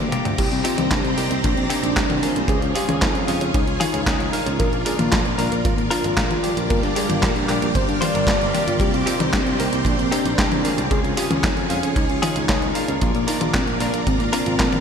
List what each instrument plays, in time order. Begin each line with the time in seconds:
Already playing: soft synth lead A#3, string machine G4 F5 A#5 D6
0.12 clean electric guitar C3 A#3 D4 F4 G4, closed hi-hat, mid tom
0.25 picked electric bass D2, closed hi-hat, mid tom
0.38 picked electric bass C2, synth arpeggio sound A#3, string machine C4 G4 C5 D5 A#5, soft synth lead G4, kick, closed hi-hat, crash
0.52 picked electric bass C2, soft synth lead C4, closed hi-hat
0.64 clean electric guitar C3 A#3 C4 D#4 G4, synth arpeggio sound C4, soft synth lead F4, open hi-hat
0.78 picked electric bass C2, soft synth lead C4, synth arpeggio sound D#4, closed hi-hat, high tom
0.91 picked electric bass C2, soft synth lead D4, synth arpeggio sound G4, kick, snare, clap, closed hi-hat
1.04 picked electric bass C2, soft synth lead C4, closed hi-hat
1.17 picked electric bass C2, clean electric guitar C3 A#3 C4 D#4 G4, soft synth lead C4, synth arpeggio sound A#4, open hi-hat
1.31 picked electric bass C2, synth arpeggio sound A#3, soft synth lead C4, closed hi-hat
1.44 picked electric bass A#1, synth arpeggio sound A#3, soft synth lead D4, kick, closed hi-hat
1.57 picked electric bass A#1, soft synth lead C4, closed hi-hat
1.70 clean electric guitar C3 A#3 C4 D#4 G4, synth arpeggio sound C4, soft synth lead D4, open hi-hat
1.83 picked electric bass A#1, synth arpeggio sound D#4, closed hi-hat
1.96 picked electric bass C2, clean electric guitar C3 A#3 C4 D#4 G4, synth arpeggio sound G4, kick, snare, clap, closed hi-hat
2.10 picked electric bass C2, closed hi-hat, high tom
2.22 clean electric guitar C#3 G#3 C#4 F4 G#4, synth arpeggio sound A#4, open hi-hat
2.36 picked electric bass C2, synth arpeggio sound A#3, closed hi-hat
2.48 picked electric bass C#2, synth arpeggio sound C#4, string machine F4 G#4 C#5, soft synth lead G#4, kick, closed hi-hat
2.62 picked electric bass C#2, soft synth lead C#4, closed hi-hat
2.75 clean electric guitar C#3 G#3 C#4 F4 G#4, synth arpeggio sound F4, soft synth lead G4, open hi-hat
2.88 picked electric bass C#2, soft synth lead C#4, synth arpeggio sound G#4, closed hi-hat, high tom
3.01 picked electric bass F2, soft synth lead D#4, synth arpeggio sound C#5, kick, snare, clap, closed hi-hat
3.15 picked electric bass F2, soft synth lead C#4, closed hi-hat
3.27 picked electric bass F2, clean electric guitar C#3 G#3 C#4 F4 G#4, soft synth lead C#4, synth arpeggio sound F5, open hi-hat
3.41 picked electric bass F2, soft synth lead C#4, synth arpeggio sound C#4, closed hi-hat
3.54 picked electric bass C#2, synth arpeggio sound C#4, soft synth lead D#4, kick, closed hi-hat
3.67 picked electric bass C#2, soft synth lead C#4, closed hi-hat
3.80 clean electric guitar C#3 G#3 C#4 F4 G#4, soft synth lead D#4, synth arpeggio sound F4, open hi-hat, high tom
3.94 picked electric bass C#2, synth arpeggio sound G#4, closed hi-hat
4.06 picked electric bass C#2, clean electric guitar C#3 G#3 C#4 F4 G#4, synth arpeggio sound C#5, kick, snare, clap, closed hi-hat
4.20 picked electric bass C#2, closed hi-hat
4.33 clean electric guitar A#2 A#3 D4 F4 A#4, synth arpeggio sound F5, open hi-hat
4.46 picked electric bass C#2, synth arpeggio sound C#4, closed hi-hat
4.59 picked electric bass A#1, synth arpeggio sound A#3, soft synth lead A#4, string machine A#4 D5, kick, closed hi-hat
4.72 picked electric bass A#1, soft synth lead A#3, closed hi-hat
4.85 clean electric guitar A#2 A#3 D4 F4 A#4, synth arpeggio sound D4, soft synth lead G#4, open hi-hat
4.99 picked electric bass A#1, soft synth lead A#3, synth arpeggio sound F4, closed hi-hat, high tom
5.12 picked electric bass A#1, soft synth lead F4, synth arpeggio sound A#4, kick, snare, clap, closed hi-hat
5.25 picked electric bass A#1, soft synth lead A#3, closed hi-hat
5.38 picked electric bass A#1, clean electric guitar A#2 A#3 D4 F4 A#4, soft synth lead A#3, synth arpeggio sound D5, open hi-hat
5.51 picked electric bass A#1, soft synth lead A#3, synth arpeggio sound A#3, closed hi-hat
5.65 picked electric bass G#1, synth arpeggio sound A#3, soft synth lead F4, kick, closed hi-hat
5.78 picked electric bass G#1, soft synth lead A#3, closed hi-hat
5.91 clean electric guitar A#2 A#3 D4 F4 A#4, synth arpeggio sound D4, soft synth lead F4, open hi-hat
6.04 picked electric bass G#1, synth arpeggio sound F4, closed hi-hat
6.17 picked electric bass A#1, clean electric guitar A#2 A#3 D4 F4 A#4, synth arpeggio sound A#4, kick, snare, clap, closed hi-hat
6.30 picked electric bass A#1, closed hi-hat, high tom
6.43 clean electric guitar G2 A#3 D4 F4 G4, synth arpeggio sound D5, open hi-hat
6.57 picked electric bass A#1, synth arpeggio sound A#3, closed hi-hat
6.70 picked electric bass G1, string machine G3 G4 F5, synth arpeggio sound A#3, soft synth lead A#4, kick, closed hi-hat
6.83 picked electric bass G1, soft synth lead D4, snare, closed hi-hat
6.95 clean electric guitar G2 A#3 D4 F4 G4, synth arpeggio sound D4, soft synth lead G#4, open hi-hat
7.09 picked electric bass G1, soft synth lead D4, synth arpeggio sound F4, closed hi-hat, high tom
7.22 picked electric bass A#1, synth arpeggio sound G4, soft synth lead A#4, kick, snare, clap, closed hi-hat
7.35 picked electric bass A#1, soft synth lead D4, closed hi-hat
7.48 picked electric bass A#1, clean electric guitar G2 A#3 D4 F4 G4, soft synth lead D4, synth arpeggio sound A#4, clap, open hi-hat
7.62 picked electric bass A#1, synth arpeggio sound A#3, soft synth lead D4, closed hi-hat
7.75 picked electric bass G1, synth arpeggio sound A#3, soft synth lead C5, kick, closed hi-hat
7.88 picked electric bass G1, soft synth lead D4, closed hi-hat
8.01 clean electric guitar G2 A#3 D4 F4 C5, synth arpeggio sound G4, soft synth lead D5, open hi-hat, high tom
8.15 picked electric bass G1, synth arpeggio sound A#4, closed hi-hat
8.27 picked electric bass G1, synth arpeggio sound F4, kick, snare, clap, closed hi-hat
8.41 picked electric bass G1, closed hi-hat
8.54 clean electric guitar C3 A#3 D4 F4 G4, synth arpeggio sound D4, open hi-hat, high tom
8.67 picked electric bass G1, synth arpeggio sound F4, closed hi-hat
8.80 picked electric bass C2, synth arpeggio sound A#3, string machine C4 C5, soft synth lead G4, kick, closed hi-hat
8.93 picked electric bass C2, soft synth lead C4, closed hi-hat
9.06 clean electric guitar C3 A#3 C4 D#4 G4, synth arpeggio sound C4, soft synth lead F4, open hi-hat
9.20 picked electric bass C2, soft synth lead C4, synth arpeggio sound D#4, closed hi-hat, high tom
9.33 picked electric bass C2, soft synth lead D4, synth arpeggio sound G4, kick, snare, clap, closed hi-hat
9.46 picked electric bass C2, soft synth lead C4, closed hi-hat
9.59 picked electric bass C2, clean electric guitar C3 A#3 C4 D#4 G4, soft synth lead C4, synth arpeggio sound A#4, open hi-hat
9.72 picked electric bass C2, synth arpeggio sound A#3, soft synth lead C4, closed hi-hat
9.85 picked electric bass A#1, synth arpeggio sound A#3, soft synth lead D4, kick, closed hi-hat
9.98 picked electric bass A#1, soft synth lead C4, closed hi-hat
10.11 clean electric guitar C3 A#3 C4 D#4 G4, synth arpeggio sound C4, soft synth lead D4, open hi-hat
10.25 picked electric bass A#1, synth arpeggio sound D#4, closed hi-hat
10.38 picked electric bass C2, clean electric guitar C3 A#3 C4 D#4 G4, synth arpeggio sound G4, kick, snare, clap, closed hi-hat
10.52 picked electric bass C2, closed hi-hat, high tom
10.64 clean electric guitar C#3 G#3 C#4 F4 G#4, synth arpeggio sound A#4, open hi-hat
10.78 picked electric bass C2, synth arpeggio sound A#3, closed hi-hat
10.91 picked electric bass C#2, synth arpeggio sound C#4, string machine F4 G#4 C#5, soft synth lead G#4, kick, closed hi-hat
11.04 picked electric bass C#2, soft synth lead C#4, closed hi-hat
11.17 clean electric guitar C#3 G#3 C#4 F4 G#4, synth arpeggio sound F4, soft synth lead G4, open hi-hat
11.30 picked electric bass C#2, soft synth lead C#4, synth arpeggio sound G#4, closed hi-hat, high tom
11.44 picked electric bass F2, soft synth lead D#4, synth arpeggio sound C#5, kick, snare, clap, closed hi-hat
11.57 picked electric bass F2, soft synth lead C#4, closed hi-hat
11.69 picked electric bass F2, clean electric guitar C#3 G#3 C#4 F4 G#4, soft synth lead C#4, synth arpeggio sound F5, open hi-hat
11.83 picked electric bass F2, soft synth lead C#4, synth arpeggio sound C#4, closed hi-hat
11.96 picked electric bass C#2, synth arpeggio sound C#4, soft synth lead D#4, kick, closed hi-hat
12.10 picked electric bass C#2, soft synth lead C#4, closed hi-hat
12.22 clean electric guitar C#3 G#3 C#4 F4 G#4, soft synth lead D#4, synth arpeggio sound F4, open hi-hat, high tom
12.36 picked electric bass C#2, synth arpeggio sound G#4, closed hi-hat
12.48 picked electric bass C#2, clean electric guitar C#3 G#3 C#4 F4 G#4, synth arpeggio sound C#5, kick, snare, clap, closed hi-hat
12.62 picked electric bass C#2, closed hi-hat
12.75 clean electric guitar A#2 A#3 D4 F4 A#4, synth arpeggio sound F5, open hi-hat
12.88 picked electric bass C#2, synth arpeggio sound C#4, closed hi-hat
13.01 picked electric bass A#1, synth arpeggio sound A#3, soft synth lead F4, string machine F4 A#4 D5, kick, closed hi-hat
13.15 picked electric bass A#1, soft synth lead A#3, closed hi-hat
13.27 clean electric guitar A#2 A#3 D4 F4 A#4, synth arpeggio sound D4, soft synth lead D#4, open hi-hat
13.41 picked electric bass A#1, soft synth lead A#3, synth arpeggio sound F4, closed hi-hat, high tom
13.54 picked electric bass A#1, soft synth lead C4, synth arpeggio sound A#4, kick, snare, clap, closed hi-hat
13.67 picked electric bass A#1, soft synth lead A#3, closed hi-hat
13.80 picked electric bass A#1, clean electric guitar A#2 A#3 D4 F4 A#4, soft synth lead A#3, synth arpeggio sound D5, open hi-hat
13.94 picked electric bass A#1, synth arpeggio sound A#3, soft synth lead A#3, closed hi-hat
14.07 picked electric bass G#1, synth arpeggio sound A#3, soft synth lead C4, kick, closed hi-hat
14.20 picked electric bass G#1, soft synth lead A#3, closed hi-hat
14.33 clean electric guitar A#2 A#3 D4 F4 A#4, soft synth lead C4, synth arpeggio sound D4, open hi-hat
14.46 picked electric bass G#1, synth arpeggio sound F4, closed hi-hat
14.59 picked electric bass A#1, clean electric guitar A#2 A#3 D4 F4 A#4, synth arpeggio sound A#4, kick, snare, clap, closed hi-hat
14.73 picked electric bass A#1, closed hi-hat, high tom